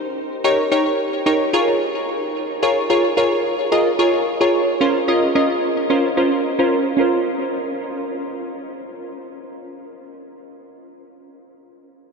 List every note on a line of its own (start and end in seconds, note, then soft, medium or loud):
0.44 0.63 D#4 medium
0.44 0.63 G4 medium
0.44 0.63 A#4 medium
0.44 0.63 C#5 loud
0.71 1.09 D#4 medium
0.71 1.09 G4 medium
0.71 1.09 A#4 medium
0.71 1.09 C#5 medium
1.26 1.53 D#4 medium
1.26 1.53 G4 medium
1.26 1.53 A#4 medium
1.26 1.53 C#5 medium
1.53 2.41 F4 medium
1.53 2.41 G#4 medium
1.53 2.41 A#4 medium
1.53 2.41 C#5 loud
2.62 2.81 F4 medium
2.62 2.82 G#4 medium
2.62 2.82 A#4 medium
2.62 2.82 C#5 medium
2.90 3.09 F4 medium
2.90 3.09 G#4 medium
2.90 3.09 A#4 medium
2.90 3.09 C#5 medium
3.17 3.55 F4 medium
3.17 3.55 G#4 medium
3.17 3.55 A#4 medium
3.17 3.55 C#5 loud
3.72 3.91 F4 medium
3.72 3.91 G#4 medium
3.72 3.91 A#4 medium
3.72 3.91 D#5 loud
3.99 4.27 F4 medium
3.99 4.27 G#4 medium
3.99 4.27 A#4 medium
3.99 4.27 C#5 medium
4.41 4.68 F4 medium
4.41 4.68 G#4 medium
4.41 4.69 A#4 medium
4.41 4.69 C#5 medium
4.81 5.00 C#4 medium
4.81 5.00 F4 medium
4.81 5.00 A#4 medium
4.81 5.00 C5 medium
5.08 5.27 C#4 medium
5.08 5.27 F4 medium
5.08 5.27 A#4 medium
5.08 5.27 D#5 medium
5.35 5.73 C#4 medium
5.35 5.73 F4 medium
5.35 5.73 A#4 medium
5.35 5.73 D#5 medium
5.90 6.09 C#4 medium
5.90 6.09 F4 medium
5.90 6.09 A#4 medium
5.90 6.09 C5 medium
6.17 6.45 C#4 medium
6.17 6.45 F4 medium
6.17 6.45 A#4 medium
6.17 6.45 C5 medium
6.59 6.86 C#4 medium
6.59 6.87 F4 medium
6.59 6.87 A#4 medium
6.59 6.87 C5 medium
6.97 10.81 C#4 medium
6.97 10.82 F4 medium
6.97 10.83 A#4 medium
7.01 10.85 C5 medium